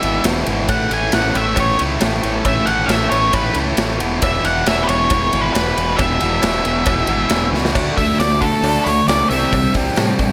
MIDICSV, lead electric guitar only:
0, 0, Header, 1, 2, 480
1, 0, Start_track
1, 0, Tempo, 442152
1, 752, Time_signature, 4, 2, 24, 8
1, 11206, End_track
2, 0, Start_track
2, 0, Title_t, "Lead electric guitar"
2, 0, Program_c, 0, 29
2, 0, Note_on_c, 0, 76, 77
2, 243, Note_off_c, 0, 76, 0
2, 753, Note_on_c, 0, 78, 93
2, 1000, Note_off_c, 0, 78, 0
2, 1017, Note_on_c, 0, 80, 92
2, 1229, Note_off_c, 0, 80, 0
2, 1240, Note_on_c, 0, 78, 88
2, 1482, Note_on_c, 0, 76, 76
2, 1483, Note_off_c, 0, 78, 0
2, 1724, Note_off_c, 0, 76, 0
2, 1739, Note_on_c, 0, 73, 73
2, 1950, Note_off_c, 0, 73, 0
2, 2663, Note_on_c, 0, 76, 97
2, 2886, Note_on_c, 0, 78, 100
2, 2915, Note_off_c, 0, 76, 0
2, 3104, Note_on_c, 0, 76, 85
2, 3147, Note_off_c, 0, 78, 0
2, 3362, Note_off_c, 0, 76, 0
2, 3366, Note_on_c, 0, 73, 74
2, 3627, Note_off_c, 0, 73, 0
2, 3627, Note_on_c, 0, 71, 75
2, 3853, Note_off_c, 0, 71, 0
2, 4592, Note_on_c, 0, 76, 102
2, 4829, Note_on_c, 0, 78, 99
2, 4839, Note_off_c, 0, 76, 0
2, 5073, Note_on_c, 0, 76, 90
2, 5078, Note_off_c, 0, 78, 0
2, 5242, Note_off_c, 0, 76, 0
2, 5243, Note_on_c, 0, 71, 73
2, 5290, Note_on_c, 0, 73, 89
2, 5315, Note_off_c, 0, 71, 0
2, 5876, Note_on_c, 0, 71, 78
2, 5919, Note_off_c, 0, 73, 0
2, 5993, Note_off_c, 0, 71, 0
2, 6006, Note_on_c, 0, 71, 85
2, 6475, Note_on_c, 0, 76, 89
2, 6513, Note_off_c, 0, 71, 0
2, 8129, Note_off_c, 0, 76, 0
2, 8655, Note_on_c, 0, 76, 91
2, 8885, Note_off_c, 0, 76, 0
2, 8898, Note_on_c, 0, 74, 88
2, 9128, Note_on_c, 0, 69, 80
2, 9152, Note_off_c, 0, 74, 0
2, 9597, Note_on_c, 0, 73, 78
2, 9634, Note_off_c, 0, 69, 0
2, 9854, Note_off_c, 0, 73, 0
2, 9858, Note_on_c, 0, 74, 88
2, 10088, Note_off_c, 0, 74, 0
2, 10093, Note_on_c, 0, 76, 79
2, 10547, Note_off_c, 0, 76, 0
2, 11206, End_track
0, 0, End_of_file